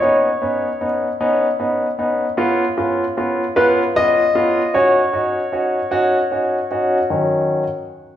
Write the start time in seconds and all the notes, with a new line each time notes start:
0.00 B3 C#4 D#4 C#5
0.42 B3 C#4 D#4
0.81 B3 C#4 D#4
1.21 B3 C#4 D#4
1.60 B3 C#4 D#4
1.99 B3 C#4 D#4
2.37 B3 C#4 F4
2.77 B3 C#4 F4
3.17 B3 C#4 F4
3.56 B3 C#4 F4 B4
3.96 B3 C#4 F4 D#5
4.35 B3 C#4 F4
4.74 C#4 D#4 F#4 C#5
5.13 C#4 D#4 F#4
5.52 C#4 D#4 F#4
5.91 C#4 D#4 F#4
6.31 C#4 D#4 F#4
6.71 C#4 D#4 F#4
7.10 D#3 F#3 C#4